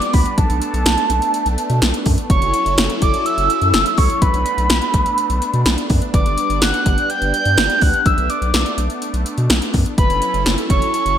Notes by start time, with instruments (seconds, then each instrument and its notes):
Already playing: analog synth pad G3 B3 D4, soft synth lead D6
0.02 closed hi-hat
0.13 analog synth bass D2, soft synth lead B5, kick, open hi-hat
0.26 closed hi-hat
0.31 soft synth lead B5
0.38 analog synth bass B1, analog synth pad A3, soft synth lead A5, kick, closed hi-hat
0.50 analog synth bass B1, closed hi-hat
0.62 closed hi-hat
0.74 analog synth bass B1, closed hi-hat
0.86 analog synth bass B1, snare, closed hi-hat
0.98 closed hi-hat
1.10 analog synth bass B1, closed hi-hat
1.22 closed hi-hat
1.34 closed hi-hat
1.46 analog synth bass B1, closed hi-hat
1.58 closed hi-hat
1.70 analog synth bass B2, closed hi-hat
1.82 analog synth bass B1, snare, closed hi-hat
1.94 closed hi-hat
2.06 analog synth bass F#2, kick, open hi-hat
2.18 closed hi-hat
2.30 analog synth bass F#1, analog synth pad F#3 C#4 E4 A4, soft synth lead C#6, kick, closed hi-hat
2.42 analog synth bass F#1, closed hi-hat
2.54 closed hi-hat
2.66 analog synth bass F#1, closed hi-hat
2.78 analog synth bass F#1, snare, closed hi-hat
2.90 closed hi-hat
3.02 analog synth bass F#1, soft synth lead D6, kick, closed hi-hat
3.14 closed hi-hat
3.26 soft synth lead E6, closed hi-hat
3.38 analog synth bass F#1, closed hi-hat
3.50 closed hi-hat
3.62 analog synth bass F#2, closed hi-hat
3.74 analog synth bass F#1, snare, closed hi-hat
3.86 closed hi-hat
3.98 analog synth bass C#2, soft synth lead C#6, kick, open hi-hat
4.10 closed hi-hat
4.22 analog synth bass B1, analog synth pad A3 B3 D4, soft synth lead B5, kick, closed hi-hat
4.34 analog synth bass B1, closed hi-hat
4.46 closed hi-hat
4.58 analog synth bass B1, closed hi-hat
4.70 analog synth bass B1, snare, closed hi-hat
4.82 closed hi-hat
4.94 analog synth bass B1, kick, closed hi-hat
5.06 closed hi-hat
5.18 closed hi-hat
5.30 analog synth bass B1, closed hi-hat
5.42 closed hi-hat
5.54 analog synth bass B2, closed hi-hat
5.66 analog synth bass B1, snare, closed hi-hat
5.78 closed hi-hat
5.90 analog synth bass F#2, kick, open hi-hat
6.02 closed hi-hat
6.14 analog synth bass G1, analog synth pad G3, soft synth lead D6, kick, closed hi-hat
6.26 analog synth bass G1, closed hi-hat
6.38 closed hi-hat
6.50 analog synth bass G1, closed hi-hat
6.62 analog synth bass G1, soft synth lead F#6, snare, closed hi-hat
6.74 closed hi-hat
6.86 analog synth bass G1, kick, closed hi-hat
6.98 closed hi-hat
7.10 soft synth lead G6, closed hi-hat
7.22 analog synth bass G1, closed hi-hat
7.34 soft synth lead G6, closed hi-hat
7.45 analog synth bass G2, closed hi-hat
7.57 analog synth bass G1, snare, closed hi-hat
7.70 closed hi-hat
7.81 analog synth bass D2, soft synth lead F#6, kick, open hi-hat
7.94 closed hi-hat
8.06 analog synth bass B1, analog synth pad A3, soft synth lead E6, kick, closed hi-hat
8.18 analog synth bass B1, closed hi-hat
8.30 soft synth lead D6, closed hi-hat
8.42 analog synth bass B1, closed hi-hat
8.54 analog synth bass B1, snare, closed hi-hat
8.66 closed hi-hat
8.78 analog synth bass B1, closed hi-hat
8.90 closed hi-hat
9.02 closed hi-hat
9.14 analog synth bass B1, closed hi-hat
9.26 closed hi-hat
9.38 analog synth bass B2, closed hi-hat
9.50 analog synth bass B1, snare, closed hi-hat
9.62 closed hi-hat
9.74 analog synth bass F#2, kick, open hi-hat
9.86 closed hi-hat
9.98 analog synth bass F#1, analog synth pad F#3 C#4 E4 A4, soft synth lead B5, kick, closed hi-hat
10.10 analog synth bass F#1, closed hi-hat
10.22 closed hi-hat
10.34 analog synth bass F#1, closed hi-hat
10.46 analog synth bass F#1, snare, closed hi-hat
10.58 closed hi-hat
10.70 analog synth bass F#1, soft synth lead C#6, kick, closed hi-hat
10.82 closed hi-hat
10.94 soft synth lead C#6, closed hi-hat
11.06 analog synth bass F#1, closed hi-hat